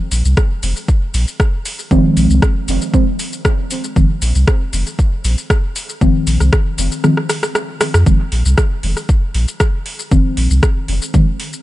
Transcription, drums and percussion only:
0.12 open hi-hat, shaker
0.25 shaker
0.37 kick, cross-stick, shaker
0.63 open hi-hat, shaker
0.76 shaker
0.88 kick, shaker
1.14 open hi-hat, shaker
1.28 shaker
1.40 kick, cross-stick, shaker
1.65 open hi-hat, shaker
1.79 shaker
1.91 kick, shaker
2.17 open hi-hat, shaker
2.30 shaker
2.42 kick, cross-stick, shaker
2.68 open hi-hat, shaker
2.82 shaker
2.94 kick, shaker
3.19 open hi-hat, shaker
3.33 shaker
3.45 kick, cross-stick, shaker
3.71 open hi-hat, shaker
3.84 shaker
3.96 kick, shaker
4.22 open hi-hat, shaker
4.35 shaker
4.48 kick, cross-stick, shaker
4.73 open hi-hat, shaker
4.87 shaker
4.99 kick, shaker
5.24 open hi-hat, shaker
5.38 shaker
5.50 kick, cross-stick, shaker
5.76 open hi-hat, shaker
5.89 shaker
6.01 kick, shaker
6.27 open hi-hat, shaker
6.40 cross-stick, shaker
6.53 kick, cross-stick, shaker
6.78 open hi-hat, shaker
6.92 shaker
7.04 cross-stick, shaker
7.17 cross-stick
7.29 cross-stick, open hi-hat, shaker
7.43 cross-stick, shaker
7.55 cross-stick, shaker
7.81 cross-stick, open hi-hat, shaker
7.94 cross-stick, shaker
8.06 kick, shaker
8.32 open hi-hat
8.45 shaker
8.58 kick, cross-stick, shaker
8.83 open hi-hat
8.97 cross-stick, shaker
9.09 kick, shaker
9.34 open hi-hat
9.48 shaker
9.60 kick, cross-stick, shaker
9.86 open hi-hat
9.99 shaker
10.11 kick, shaker
10.37 open hi-hat
10.51 shaker
10.63 kick, cross-stick, shaker
10.88 open hi-hat
11.02 shaker
11.14 kick, shaker
11.40 open hi-hat
11.53 shaker

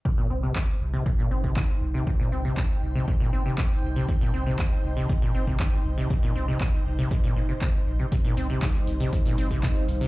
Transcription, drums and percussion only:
0.05 kick
0.56 kick, clap
1.06 kick
1.44 kick
1.56 kick, clap
2.07 kick
2.57 kick, clap
3.08 kick
3.58 kick, clap
4.09 kick
4.59 kick, clap
5.09 kick
5.47 kick
5.60 kick, clap
6.10 kick
6.61 kick, clap
7.11 kick
7.61 kick, clap
8.12 kick, closed hi-hat
8.25 closed hi-hat
8.37 closed hi-hat, open hi-hat
8.50 closed hi-hat
8.62 kick, snare, clap, closed hi-hat
8.75 snare, closed hi-hat
8.87 closed hi-hat, open hi-hat
9.00 closed hi-hat
9.13 kick, closed hi-hat
9.25 snare, closed hi-hat
9.38 closed hi-hat, open hi-hat
9.51 kick, snare, closed hi-hat
9.63 kick, snare, clap, closed hi-hat
9.76 closed hi-hat
9.88 closed hi-hat, open hi-hat
10.01 snare, closed hi-hat

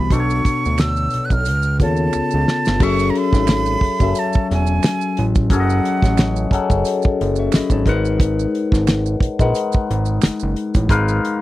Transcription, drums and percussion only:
0.10 kick, closed hi-hat, maracas
0.30 maracas
0.45 kick, closed hi-hat, maracas
0.65 maracas
0.78 finger snap, snare, closed hi-hat, maracas
0.96 maracas
1.10 closed hi-hat, maracas
1.30 kick, maracas
1.45 closed hi-hat, maracas
1.63 maracas
1.80 kick, closed hi-hat, maracas
1.97 maracas
2.13 finger snap, maracas
2.31 maracas
2.48 snare
2.65 snare, maracas
2.80 kick, crash, maracas
2.99 maracas
3.15 closed hi-hat
3.33 kick, snare, maracas
3.47 finger snap, snare, closed hi-hat, maracas
3.66 maracas
3.81 kick, open hi-hat
4.00 kick, maracas
4.15 closed hi-hat, maracas
4.33 kick, maracas
4.51 snare, closed hi-hat
4.67 maracas
4.83 finger snap, snare, closed hi-hat, maracas
5.01 maracas
5.17 closed hi-hat
5.35 kick, maracas
5.50 kick, closed hi-hat, maracas
5.70 maracas
5.85 closed hi-hat
6.02 kick, snare, closed hi-hat, maracas
6.17 finger snap, snare, closed hi-hat, maracas
6.36 maracas
6.51 kick, closed hi-hat
6.70 kick, maracas
6.85 closed hi-hat, maracas
7.02 kick, maracas
7.21 closed hi-hat
7.36 maracas
7.52 finger snap, snare, closed hi-hat, maracas
7.70 kick, maracas
7.86 kick, closed hi-hat
8.05 maracas
8.20 kick, closed hi-hat, maracas
8.39 maracas
8.55 closed hi-hat
8.72 kick, snare, maracas
8.87 finger snap, snare, closed hi-hat, maracas
9.06 maracas
9.20 kick, closed hi-hat
9.39 kick, maracas
9.55 closed hi-hat, maracas
9.72 kick, maracas
9.91 closed hi-hat
10.06 maracas
10.22 finger snap, snare, closed hi-hat, maracas
10.39 maracas
10.56 closed hi-hat
10.74 kick, closed hi-hat, maracas
10.89 kick, closed hi-hat, maracas
11.08 maracas
11.25 closed hi-hat

